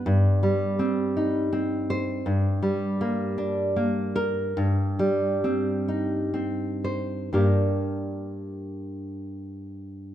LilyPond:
\new Staff \with { instrumentName = "Nylon-string guitar" } { \time 3/4 \key g \minor \tempo 4 = 72 << { r2 r8 c''8 | r2 r8 bes'8 | r2 r8 c''8 | <g, bes d' g' bes'>2. | } \\ { g,8 g8 c'8 ees'8 c'4 | g,8 g8 bes8 d'8 bes4 | g,8 g8 c'8 ees'8 c'4 | r2. | } >> }